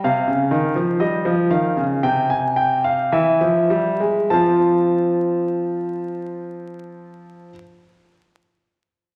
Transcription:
<<
  \new Staff \with { instrumentName = "Grand piano" } { \time 4/4 \key c \phrygian \tempo 4 = 49 f''4 ees''8 f''8 g''16 aes''16 g''16 f''16 e''4 | <c' f' a''>1 | }
  \new Staff \with { instrumentName = "Grand piano" } { \clef bass \time 4/4 \key c \phrygian c16 des16 ees16 f16 g16 f16 ees16 des16 c4 e16 f16 g16 aes16 | f1 | }
>>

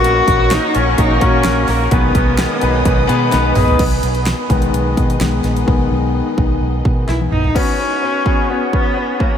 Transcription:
<<
  \new Staff \with { instrumentName = "String section" } { \time 4/4 \key gis \minor \tempo 4 = 128 <ais' cis'' fis'' cis'''>1 | <b' dis'' gis'' dis'''>1 | <b dis' gis' dis''>1~ | <b dis' gis' dis''>1 |
r1 | }
  \new Staff \with { instrumentName = "Grand piano" } { \time 4/4 \key gis \minor <ais cis' fis' ais'>8 <ais cis' fis' ais'>8 <ais cis' fis' ais'>8 <ais cis' fis' cis''>8 <ais cis' fis' gis'>8 <ais cis' fis' ais'>8 <ais cis' fis' ais'>8 <ais cis' fis' ais'>8 | <b dis' gis' b'>8 <b dis' gis' ais'>8 <b dis' gis' ais'>8 <b dis' gis' b'>8 <b dis' gis' b'>8 <b dis' gis' b'>8 <b dis' gis' b'>8 <b dis' gis' b'>8 | r1 | r1 |
<b cis' fis' b'>8 <b cis' fis' b'>8 <b cis' fis' b'>8 <b cis' fis' gis'>8 <b cis' fis' cis''>8 <b cis' fis' b'>8 <b cis' fis' b'>8 <b cis' fis' cis''>8 | }
  \new Staff \with { instrumentName = "Grand piano" } { \clef bass \time 4/4 \key gis \minor ais,4 r2. | b,4. r2 r8 | r4. <dis gis b>4. <dis gis b>8 r8 | <dis gis b>1 |
r1 | }
  \new Staff \with { instrumentName = "Cello" } { \time 4/4 \key gis \minor fis'4 dis'8 cis'8 dis'8 cis'4 ais8 | b2. r4 | r1 | r2. e'8 dis'8 |
cis'2 b8 b4 ais8 | }
  \new Staff \with { instrumentName = "Clean electric guitar" } { \time 4/4 \key gis \minor <ais cis' fis' ais'>8 <cis' fis' ais'>8 <ais cis' fis' ais'>4 <ais cis' fis' ais'>8 <cis' fis' ais'>8 <ais cis' fis' ais'>8 <cis' fis' ais'>8 | <b, dis gis b dis' b'>8 <gis b dis' b'>8 <b, dis gis b dis' b'>4 <gis b dis' b'>8 <gis b dis' b'>8 <b, dis gis b dis' b'>8 <gis b dis' b'>8 | r1 | r1 |
r1 | }
  \new Staff \with { instrumentName = "Fingered electric bass" } { \clef bass \time 4/4 \key gis \minor ais,,8 ais,,8. r16 ais,,8 ais,,8 ais,8 ais,,8 ais,,8 | b,,8 b,,8. r16 b,,8 b,,8 b,8 b,,8 ais,,8 | b,,8 b,,8. r16 b,,8 b,,8 b,8 b,,8 ais,,8 | b,,8 b,,8. r16 b,,8 b,,8 b,8 b,,8 ais,,8 |
r1 | }
  \new DrumStaff \with { instrumentName = "Drums" } \drummode { \time 4/4 hh8 <hh bd>8 <hh sn>8 hh8 <hh bd>8 <hh bd>8 <hh sn>8 <hho sn>8 | <hh bd>8 <hh bd>8 <hh sn>8 hh8 <hh bd>8 hh8 <hh sn>8 <hho toml>16 tomfh16 | <cymc hh bd>16 hh16 hh16 hh16 <hh sn>8 <hh bd>16 hh16 hh8 <hh bd>16 hh16 <hh sn>8 <hh sn>16 hh16 | bd4 r8 bd8 r8 bd8 sn16 tommh16 toml16 tomfh16 |
<cymc bd>4 r8 bd8 r8 bd8 r8 bd8 | }
>>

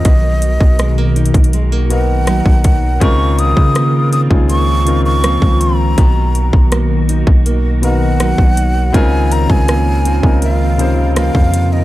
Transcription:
<<
  \new Staff \with { instrumentName = "Flute" } { \time 4/4 \key des \major \tempo 4 = 81 ees''2~ ees''16 r16 ges''4. | des'''8 ees'''4 ees'''8 des'''8. des'''8. bes''8~ | bes''4 r4. ges''4. | aes''8 bes''16 aes''4~ aes''16 f''4 f''8. ees''16 | }
  \new Staff \with { instrumentName = "Ambient pad" } { \time 4/4 \key des \major << { <ces ges' bes'>1 | <c' f'>1 | <ces ges'>1 | <c' f' bes'>1 | } \\ { ees1~ | ees1~ | ees1~ | ees1 | } >> }
  \new Staff \with { instrumentName = "Grand piano" } { \time 4/4 \key des \major r2 r8 <ces ces' ees' bes'>4. | <des c' ees' f' bes'>4. r16 <des c' ees' f' aes'>8. <des c' ees' f' bes'>4. | r2 r8 <ces ces' ees' bes'>4. | <des c' ees' f' bes'>4. r16 <des c' ees' f' bes'>8. <c des ees' f' c''>4. | }
  \new Staff \with { instrumentName = "Nylon-string guitar" } { \time 4/4 \key des \major ces4 aes16 bes16 ees'8 aes16 bes8. <ges bes ees'>4 | des4 bes8 c'8 bes4 <f bes c'>4 | ces4 bes8 ees'8 bes4 <ges bes ees'>4 | des4 bes8 c'8 bes4 <f bes c'>4 | }
  \new Staff \with { instrumentName = "808-style bass" } { \clef bass \time 4/4 \key des \major ces,8. ces,4 ces,4. ces,8. | des,8. des4 des,4. des,8. | ces,8. ces,4 ces,4. ces,8. | des,8. des,4 des,4. f,8. | }
  \new DrumStaff \with { instrumentName = "Drums" } \drummode { \time 4/4 <hh bd>8 hh16 bd16 <hh ss>8 hh32 hh32 <hh bd>32 hh32 hh8 hh8 <hh ss>16 bd16 <hh bd>8 | <hh bd>8 hh16 bd16 <hh ss>8 hh16 bd16 hh8 hh8 <hh ss>16 bd16 hh8 | <hh bd>8 hh16 bd16 <hh ss>8 hh16 bd16 hh8 hh8 <hh ss>16 bd16 hh8 | <hh bd>8 hh16 bd16 <hh ss>8 hh16 bd16 hh8 hh8 <hh ss>16 bd16 hh8 | }
>>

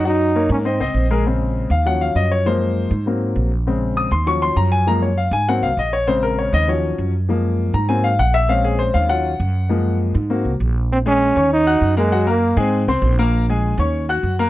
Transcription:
<<
  \new Staff \with { instrumentName = "Grand piano" } { \time 4/4 \key bes \minor \tempo 4 = 199 <ges ges' ges''>4 <bes bes' des''>4 <c' c'' ees''>8 <c' c'' ees''>4 <aes aes' bes'>8 | r4. f''8 ges''8 f''8 ees''8 des''8 | c''2 r2 | r4 ees'''8 c'''8 des'''8 c'''8 bes''8 aes''8 |
bes''8 des''8 f''8 aes''8 ges''8 f''8 ees''8 des''8 | c''8 bes'8 des''8 ees''8 des''4. r8 | r4. bes''8 aes''8 f''8 ges''8 e''8 | f''8 aes'8 c''8 f''8 ges''2~ |
ges''4 r2. | r8 <aes aes' aes''>4 <des' des'' des'''>4 <ges' ges'' ges'''>4 <bes bes' bes''>8 | <ges ges' ges''>8 <bes bes' bes''>4 <aes aes' aes''>4 <c' c'' c'''>4 <bes bes' bes''>8~ | <bes bes' bes''>8 <aes aes' aes''>4 <des' des'' des'''>4 <ges' ges'' ges'''>4 <bes bes' bes''>8 | }
  \new Staff \with { instrumentName = "Grand piano" } { \clef bass \time 4/4 \key bes \minor r1 | <des aes c'>4. r8 <f ges des'>2 | <f aes bes>4. r8 <ges bes c'>4. r8 | <des aes c'>4. r8 <f ges des'>2 |
<f aes bes>8 r4. <ges bes c'>8 r4. | <des aes c'>2 <f ges des'>4. r8 | <f aes bes>4. r8 <ges bes c'>8 r4. | <aes c' des'>2 <ges des' f'>8 r4. |
<f aes bes>4. r8 <bes c' ges'>8 r4. | r1 | r1 | r1 | }
  \new Staff \with { instrumentName = "Trombone" } { \time 4/4 \key bes \minor ees'4. des'8 c'4 r4 | r1 | r1 | r1 |
r1 | r1 | r1 | r1 |
r1 | c'8 des'4. ees'4. aes8~ | aes8 bes4 c'4 r4. | r1 | }
  \new Staff \with { instrumentName = "Upright bass" } { \clef bass \time 4/4 \key bes \minor ges,4. aes,4 c,8 bes,,4~ | bes,,4. ees,4. ges,4~ | ges,4. aes,4. bes,,4~ | bes,,4. ees,4. ges,4~ |
ges,4. aes,4 c,8 bes,,4~ | bes,,4. ees,4. ges,4~ | ges,4. aes,4. bes,,4~ | bes,,4. ees,4. ges,4~ |
ges,4. aes,4 c,8 bes,,4~ | bes,,4. ees,4. ges,4~ | ges,4. aes,4 c,8 bes,,4~ | bes,,4. ees,4. ges,4 | }
>>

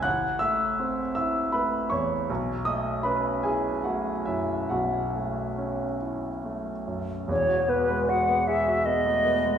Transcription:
<<
  \new Staff \with { instrumentName = "Flute" } { \time 6/8 \key e \major \tempo 4. = 51 r2. | r2. | r2. | cis''8 b'8 fis''8 e''8 dis''4 | }
  \new Staff \with { instrumentName = "Grand piano" } { \time 6/8 \key e \major <fis'' fis'''>8 <e'' e'''>4 <e'' e'''>8 <b' b''>8 <cis'' cis'''>8~ | <cis'' cis'''>8 <dis'' dis'''>8 <b' b''>8 <gis' gis''>8 <fis' fis''>8 <e' e''>8 | <fis' fis''>4. r4. | r2. | }
  \new Staff \with { instrumentName = "Grand piano" } { \time 6/8 \key e \major a,,8 a8 c'8 e'8 a8 e,8 | b,,8 a8 cis'8 e'8 a8 fis,8 | b,,8 a8 cis'8 e'8 a8 fis,8 | <e,, e,>16 fis'16 b16 gis16 fis'16 b16 gis'16 fis'16 b16 a16 b16 gis16 | }
>>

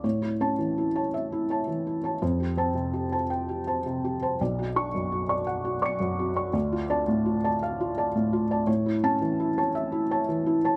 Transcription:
<<
  \new Staff \with { instrumentName = "Felt piano" } { \time 6/8 \key a \major \tempo 4. = 56 << { r8 a''16 r2 r16 | r8 a''16 r2 r16 | r8 cis'''16 r4 r16 <d''' cis''''>4 | r8 a''16 r2 r16 |
r8 a''16 r2 r16 | } \\ { cis''16 e'16 cis''16 e16 e'16 <cis'' a''>16 e''16 e'16 <cis'' a''>16 e16 e'16 <cis'' a''>16 | c''16 g'16 c''16 c16 g'16 <c'' a''>16 g''16 g'16 <c'' a''>16 c16 g'16 <c'' a''>16 | d''16 fis'16 d''16 fis,16 fis'16 <d'' cis'''>16 fis''16 fis'16 <d'' cis'''>16 fis,16 fis'16 <d'' cis'''>16 | d''16 f'16 d''16 a,16 f'16 <d'' a''>16 f''16 f'16 <d'' a''>16 a,16 f'16 <d'' a''>16 |
cis''16 e'16 cis''16 e16 e'16 <cis'' a''>16 e''16 e'16 <cis'' a''>16 e16 e'16 <cis'' a''>16 | } >> }
  \new Staff \with { instrumentName = "Felt piano" } { \clef bass \time 6/8 \key a \major a,8 cis'4 r4. | f,8 c'4 r4. | b,,8 d'4 r4. | d,8 d'4 r4. |
a,8 cis'4 r4. | }
>>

